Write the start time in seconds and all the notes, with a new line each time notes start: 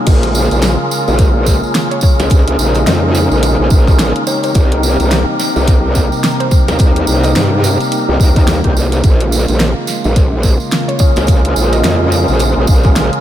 Already playing: A#3 C#4 F4 G#4 A#4
0.06 A#1 C#3 G#3 F4, kick, closed hi-hat, crash, tambourine
0.23 closed hi-hat
0.35 tambourine
0.51 A#1, closed hi-hat, tambourine
0.62 snare, closed hi-hat, tambourine
0.91 tambourine
1.07 A#1, tambourine
1.19 kick, closed hi-hat, tambourine
1.46 kick, tambourine
1.63 tambourine
1.74 snare, closed hi-hat, tambourine
1.91 C#5, closed hi-hat
2.01 C#4 F4 G#4 A#4 C#5, kick, tambourine
2.19 C#2, snare, closed hi-hat, tambourine
2.30 D#4, kick, closed hi-hat, tambourine
2.48 closed hi-hat
2.59 A#1, tambourine
2.74 D#5, closed hi-hat, tambourine
2.87 F2 D#5, snare, closed hi-hat, tambourine
3.15 snare, tambourine
3.31 A#1, tambourine
3.43 closed hi-hat, tambourine
3.60 A#1
3.70 A#1, kick, tambourine
3.87 kick, tambourine
3.99 snare, closed hi-hat, tambourine
4.16 closed hi-hat
4.27 C4 D#4 G4 A#4 C#5, tambourine
4.43 C#5, closed hi-hat, tambourine
4.55 C2 C3 G3 A#3 D#4, kick, closed hi-hat, tambourine
4.72 closed hi-hat
4.83 tambourine
5.00 C2, closed hi-hat, tambourine
5.11 snare, closed hi-hat, tambourine
5.39 snare, tambourine
5.56 C2, tambourine
5.67 kick, closed hi-hat, tambourine
5.95 kick, tambourine
6.12 tambourine
6.23 snare, closed hi-hat, tambourine
6.40 C5, closed hi-hat
6.51 C4 D#4 G4 A#4 C5, kick, tambourine
6.68 D#2, snare, closed hi-hat, tambourine
6.79 kick, closed hi-hat, tambourine
6.96 closed hi-hat
7.07 C2, tambourine
7.23 D#5, closed hi-hat, tambourine
7.35 G2 D#5, snare, closed hi-hat, tambourine
7.64 tambourine
7.80 closed hi-hat, tambourine
7.92 closed hi-hat, tambourine
8.09 C2
8.20 D#2, kick, tambourine
8.36 C4 D#4 G4 A#4, kick, closed hi-hat, tambourine
8.48 snare, closed hi-hat, tambourine
8.64 C2 C4 D#4 G4 C5, kick, closed hi-hat
8.76 C2, tambourine
8.92 closed hi-hat, tambourine
9.03 A#1 C#3 G#3 F4, kick, closed hi-hat, tambourine
9.21 closed hi-hat
9.32 tambourine
9.48 A#1, closed hi-hat, tambourine
9.60 snare, closed hi-hat, tambourine
9.87 snare, tambourine
10.04 A#1, tambourine
10.16 kick, closed hi-hat, tambourine
10.43 kick, tambourine
10.60 tambourine
10.71 snare, closed hi-hat, tambourine
10.88 C#5, closed hi-hat
10.99 C#4 F4 G#4 A#4 C#5, kick, tambourine
11.16 C#2, snare, closed hi-hat, tambourine
11.27 kick, closed hi-hat, tambourine
11.45 closed hi-hat
11.56 A#1, tambourine
11.73 D#5, closed hi-hat, tambourine
11.84 F2 D#5, snare, closed hi-hat, tambourine
12.12 tambourine
12.28 A#1, tambourine
12.39 closed hi-hat, tambourine
12.57 A#1
12.67 A#1, kick, tambourine
12.83 kick, tambourine
12.96 snare, closed hi-hat, tambourine
13.13 closed hi-hat